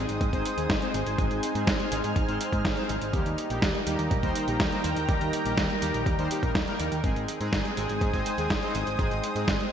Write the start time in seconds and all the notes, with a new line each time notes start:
Already playing: G#3 C4 D#4 G#4 C5 G#5 D#6
0.09 G#1, closed hi-hat
0.21 G#2, kick, closed hi-hat
0.33 G#1 G#3 C4 D#4 C5, kick, closed hi-hat
0.46 closed hi-hat
0.57 D#2 G#3 C4 D#4 G#4, closed hi-hat
0.70 G#1, kick, snare, closed hi-hat
0.82 G#3 C4 D#4 C5, closed hi-hat
0.94 G#1, closed hi-hat
1.06 G#1, closed hi-hat
1.18 G#1 G#3 C4 D#4 G#4 F6, kick, closed hi-hat
1.31 G#1, closed hi-hat
1.43 closed hi-hat
1.55 G#2 G#3 C4 D#4 G#4, closed hi-hat
1.67 G#1, kick, snare, closed hi-hat
1.80 closed hi-hat
1.92 G#1 G#3 C4 D#4 G#4, closed hi-hat
2.04 G#2, closed hi-hat
2.16 G#1, kick, closed hi-hat
2.28 G#1 G#3 C4 D#4 C5, closed hi-hat
2.41 closed hi-hat
2.53 G#2 G#3 C4 D#4 G#4, kick, closed hi-hat
2.65 G#1, kick, snare, closed hi-hat
2.77 G#3 C4 D#4 C5, closed hi-hat
2.89 G#1, closed hi-hat
3.01 G#1, closed hi-hat
3.13 D#2 D#3 G3 A#3 D#4 G4 A#4 G5 A#5, kick, closed hi-hat
3.26 D#2, closed hi-hat
3.38 closed hi-hat
3.50 A#1 G3 A#3 D#4 G4, closed hi-hat
3.62 D#2, kick, snare, closed hi-hat
3.75 closed hi-hat
3.86 D#2 G3 A#3 D#4 G4, closed hi-hat
3.99 D#2, closed hi-hat
4.11 A#1, kick, closed hi-hat
4.23 D#2 G3 A#3 D#4 C5, kick, closed hi-hat
4.36 closed hi-hat
4.48 A#1 G3 A#3 D#4 G4, closed hi-hat
4.60 D#2, kick, snare, closed hi-hat
4.72 G3 A#3 D#4 C5, closed hi-hat
4.84 D#2, closed hi-hat
4.96 D#2, closed hi-hat
5.09 D#2 G3 A#3 D#4 G4, kick, closed hi-hat
5.21 D#2, closed hi-hat
5.33 closed hi-hat
5.45 A#1 G3 A#3 D#4 G4, closed hi-hat
5.57 D#2, kick, snare, closed hi-hat
5.70 closed hi-hat
5.82 D#2 G3 A#3 D#4 G4, closed hi-hat
5.94 A#1, closed hi-hat
6.06 D#2, kick, closed hi-hat
6.18 D#2 G3 A#3 D#4 C5, closed hi-hat
6.31 G3 A#3 D#4 G4, closed hi-hat
6.43 A#1 G3 A#3 D#4 A#4, kick, closed hi-hat
6.55 D#2, kick, snare, closed hi-hat
6.67 G3 A#3 D#4 A#4, closed hi-hat
6.80 D#2, closed hi-hat
6.92 D#2, closed hi-hat
7.04 G#1 G#3 C4 D#4 G#4 C5 G#5 D#6, kick, closed hi-hat
7.16 G#1, closed hi-hat
7.28 closed hi-hat
7.41 G#2 G#3 C4 D#4 G#4, closed hi-hat
7.53 G#1, kick, snare, closed hi-hat
7.65 closed hi-hat
7.77 G#1 G#3 C4 D#4 G#4, closed hi-hat
7.89 G#1, closed hi-hat
8.01 G#2, kick, closed hi-hat
8.14 G#1 G#3 C4 D#4 C5, kick, closed hi-hat
8.26 closed hi-hat
8.38 D#2 G#3 C4 D#4 G#4, closed hi-hat
8.50 G#1, kick, snare, closed hi-hat
8.63 G#3 C4 D#4 C5, closed hi-hat
8.75 G#1, closed hi-hat
8.87 closed hi-hat
8.99 G#1 G#3 C4 D#4 G#4 G5, kick, closed hi-hat
9.11 G#1, closed hi-hat
9.24 closed hi-hat
9.35 G#2 G#3 C4 D#4 G#4, closed hi-hat
9.48 G#1, kick, snare, closed hi-hat
9.60 closed hi-hat